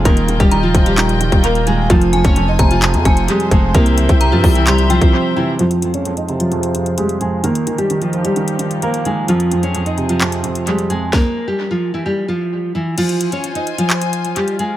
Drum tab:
CC |----------------|----------------|----------------|----------------|
HH |xxxxx-xxxxxxxxx-|xxxxx-xxxxxxxxx-|xxxxx-oxxxxx----|xxxxxxxxxxxxxxx-|
CP |--------x-------|--------x-------|--------x-------|----------------|
SD |----------------|----------------|----------------|----------------|
BD |o--o--o----o----|o--o--o---o---o-|o--o--o----o----|----------------|

CC |----------------|----------------|----------------|x---------------|
HH |xxxxxxxxxxxxxxx-|xxxxxxxxxxxxxxx-|----------------|xxxxxxxxxxxxxxx-|
CP |----------------|--------x-------|----------------|--------x-------|
SD |----------------|----------------|o---------------|----------------|
BD |----------------|----------------|o---------------|----------------|